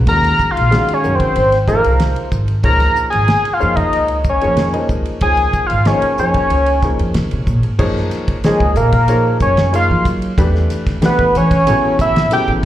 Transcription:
0.07 upright bass D#2, grand piano D#3 G#3 C#4 F#4 A#4, analog synth lead A#5 F6, kick, ride
0.24 ride
0.39 muted upright bass stroke, kick, hi-hat pedal
0.51 analog synth lead F5 C6
0.57 upright bass A#1, ride
0.71 grand piano D#3 G#3 C#4 F#4 G#4, snare, ride
0.88 ride
0.93 analog synth lead C#5 G#5
1.03 upright bass F#2, grand piano D#3 G#3 C#4 F#4 A#4, hi-hat pedal
1.15 analog synth lead C5 G5
1.20 muted upright bass stroke, kick, ride
1.36 upright bass G#1, ride
1.52 snare, ride
1.68 grand piano F3 A#3 D#4 G#4 C5, analog synth lead A#4 F5, kick, snare, hi-hat pedal
1.84 upright bass C2, ride
2.00 snare, ride
2.16 ride
2.32 upright bass G#1, kick, hi-hat pedal
2.48 ride
2.63 upright bass C#2, grand piano F3 A#3 D#4 G#4 C#5, analog synth lead A#5 F6, kick, ride
2.80 snare, ride
2.96 muted upright bass stroke, hi-hat pedal
3.10 upright bass G#1, analog synth lead G#5 D#6, ride
3.28 snare, ride
3.45 muted upright bass stroke, ride
3.53 analog synth lead F5 C6
3.60 upright bass F2, grand piano F3 A#3 D#4 G#4 C#5, hi-hat pedal
3.76 analog synth lead D#5 A#5, muted upright bass stroke, kick, ride
3.93 upright bass C#2, ride
4.08 ride
4.24 kick, hi-hat pedal
4.29 analog synth lead C#5 G#5
4.41 upright bass F2, grand piano F3 A#3 D#4 G#4 C#5, ride
4.57 snare, ride
4.73 grand piano F3 A#3 D#4 G#4 D#5, ride
4.89 upright bass C#2, kick, hi-hat pedal
5.05 ride
5.21 upright bass C#2, grand piano F3 A#3 D#4 G#4 C#5, analog synth lead G#5 D#6, kick, ride
5.37 ride
5.53 muted upright bass stroke, kick, hi-hat pedal
5.66 analog synth lead F5 C6, ride
5.71 upright bass G#1
5.85 grand piano F3 A#3 D#4 G#4 D#5, analog synth lead C#5 G#5, snare, ride
6.02 muted upright bass stroke, ride
6.18 upright bass F2, grand piano F3 A#3 D#4 G#4 C#5, analog synth lead C#5 G#5, hi-hat pedal
6.34 muted upright bass stroke, kick, ride
6.50 upright bass C#2, ride
6.66 ride
6.82 grand piano F3 A#3 D#4 G#4 C#5, kick, snare, hi-hat pedal
6.99 upright bass F2, ride
7.14 upright bass C#3, snare, ride
7.31 upright bass C3, ride
7.47 upright bass A#2, kick, hi-hat pedal
7.63 upright bass G#2, ride
7.79 upright bass F#2, grand piano F3 A#3 D#4 G#4 C#5, kick, crash
7.97 snare
8.11 snare, hi-hat pedal, ride
8.28 kick, ride
8.44 grand piano F3 A#3 D#4 G#4 C#5, analog synth lead G#4 D#5, snare, hi-hat pedal, ride
8.60 upright bass C#2, kick
8.76 upright bass A#2, analog synth lead A#4 F5, hi-hat pedal, ride
8.93 kick, ride
9.08 grand piano F3 A#3 D#4 G#4 C#5, hi-hat pedal, ride
9.40 upright bass F#2, analog synth lead C#5 G#5, kick, hi-hat pedal, ride
9.57 snare, ride
9.72 grand piano A#3 D#4 F4 G#4 C#5, analog synth lead F5 C6, hi-hat pedal, ride
9.91 upright bass F#3
10.05 kick, hi-hat pedal, ride
10.22 ride
10.38 upright bass E2, grand piano E3 A3 D4 G4 B4, kick, hi-hat pedal, ride
10.55 snare
10.70 snare, hi-hat pedal, ride
10.87 kick, snare, ride
11.01 grand piano E3 A3 D4 G4 B4, snare, hi-hat pedal, ride
11.05 analog synth lead B4 F#5
11.18 upright bass E2, kick
11.35 upright bass E3, analog synth lead C#5 G#5, hi-hat pedal, ride
11.51 kick, snare, ride
11.67 upright bass A1, grand piano C#3 F#3 B3 E4 A4, hi-hat pedal, ride
11.99 analog synth lead E5 B5, kick, hi-hat pedal, ride
12.16 snare, ride
12.31 grand piano C#3 F#3 B3 E4 A4, analog synth lead G5 D6, muted upright bass stroke, hi-hat pedal, ride
12.48 upright bass A1

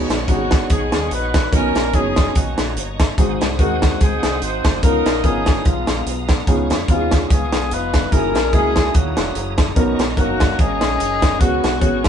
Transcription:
Already playing: upright piano C#3 B3 C#4 D#4 F#4 G#4, tonewheel organ C#5 D#5 F#5 C#6
0.10 fingered electric bass A#1, snare, closed hi-hat
0.28 fingered electric bass G#1, upright piano B3 C#4 D#4 F#4 G4, horn section B3 D#4 F#4, kick, closed hi-hat
0.33 upright piano G#4
0.51 kick, snare, closed hi-hat
0.70 fingered electric bass B1, horn section B3 D#4 G#4, kick, closed hi-hat
0.92 fingered electric bass D#2, snare, closed hi-hat
1.11 fingered electric bass A#1, horn section D#4 F#4 B4, closed hi-hat
1.34 kick, snare, closed hi-hat
1.52 fingered electric bass B1, upright piano B2 B3 C#4 D#4 F#4 A#4, horn section C#4 D#4 A#4, tonewheel organ A#5, kick, closed hi-hat
1.75 fingered electric bass A#1, snare, closed hi-hat
1.93 fingered electric bass F#1, upright piano B3 C#4 D#4 F#4 C#5, horn section C#4 D#4 G#4, kick, closed hi-hat
2.16 kick, snare, closed hi-hat
2.35 fingered electric bass B1, horn section A#3 D#4 F#4, kick, closed hi-hat
2.58 fingered electric bass A#1, snare, closed hi-hat
2.75 fingered electric bass G1, closed hi-hat
3.00 kick, snare, closed hi-hat
3.18 fingered electric bass G#1, upright piano G#2 G#3 C4 D#4 F#4 G#4, tonewheel organ C5 F#5 G#5 D#6, kick, closed hi-hat
3.41 fingered electric bass C2, snare, closed hi-hat
3.59 fingered electric bass D#2, upright piano G#3 C4 D#4 F#4 A#4, horn section C4 D#4 F#4, kick, closed hi-hat
3.82 kick, snare, closed hi-hat
4.01 fingered electric bass C#2, horn section C4 D#4 G#4, kick, closed hi-hat
4.23 fingered electric bass C2, snare, closed hi-hat
4.42 fingered electric bass G#1, horn section D#4 F#4 C5, closed hi-hat
4.65 fingered electric bass F#1, kick, snare, closed hi-hat
4.83 fingered electric bass C#2, upright piano C#3 B3 C#4 D#4 F4 A#4, tonewheel organ B3 F5 A#5, horn section D#4 F4 A#4, kick, closed hi-hat
5.06 fingered electric bass A#1, snare, closed hi-hat
5.24 fingered electric bass G#1, upright piano B3 C#4 D#4 F4 A#4, horn section B3 F4 G#4, kick, closed hi-hat
5.46 kick, snare, closed hi-hat
5.65 fingered electric bass B1, horn section G#3 B3 F4, kick, closed hi-hat
5.87 fingered electric bass A#1, snare, closed hi-hat
6.06 fingered electric bass B1, closed hi-hat
6.29 kick, snare, closed hi-hat
6.47 fingered electric bass C#2, upright piano C#3 B3 C#4 D#4 F4 G#4, tonewheel organ C#6, kick, closed hi-hat
6.70 fingered electric bass F2, snare, closed hi-hat
6.88 fingered electric bass D#2, horn section G#3 B3 F4, upright piano B3 C#4 D#4 F4 F#4, kick, closed hi-hat
6.93 upright piano G#4
7.11 kick, snare, closed hi-hat
7.30 fingered electric bass C#2, horn section B3 F4 G#4, kick, closed hi-hat
7.52 fingered electric bass B1, snare, closed hi-hat
7.71 fingered electric bass F1, horn section D#4 F4 B4, closed hi-hat
7.94 kick, snare, closed hi-hat
8.12 fingered electric bass F#1, upright piano A#3 D#4 E4 F#4 G#4, horn section C#4 E4 A#4, tonewheel organ E4 G#4 A#5 D#6, kick, closed hi-hat
8.35 fingered electric bass A#1, snare, closed hi-hat
8.53 fingered electric bass C#2, upright piano A#3 E4 F#4 A#4 D#5, horn section C#4 E4 G#4, kick, closed hi-hat
8.76 kick, snare, closed hi-hat
8.94 fingered electric bass D#2, horn section A#3 C#4 F#4, kick, closed hi-hat
9.17 fingered electric bass E1, snare, closed hi-hat
9.35 fingered electric bass F#1, closed hi-hat
9.58 kick, snare, closed hi-hat
9.76 fingered electric bass B1, upright piano B2 B3 C#4 D#4 F#4 A#4, tonewheel organ A#4 D#5 C#6, kick, closed hi-hat
9.99 fingered electric bass A#1, snare, closed hi-hat
10.17 fingered electric bass F#1, upright piano B2 C#4 D#4 F#4 A#4, horn section A#3 D#4 F#4, kick, closed hi-hat
10.40 kick, snare, closed hi-hat
10.59 fingered electric bass G#1, horn section C#4 D#4 G#4, kick, closed hi-hat
10.81 fingered electric bass A#1, snare, closed hi-hat
11.00 fingered electric bass F#1, closed hi-hat
11.22 kick, snare, closed hi-hat
11.39 fingered electric bass C#2, upright piano C#3 B3 C#4 F#4 G#4 B4, horn section B3 F#4, tonewheel organ F#5 G#5, kick, closed hi-hat
11.64 fingered electric bass B1, snare, closed hi-hat
11.80 fingered electric bass G#1, upright piano B3 C#4 F#4 G#4 C#5, horn section F#4, kick, closed hi-hat
12.04 horn section G#3 F4, kick, snare, closed hi-hat

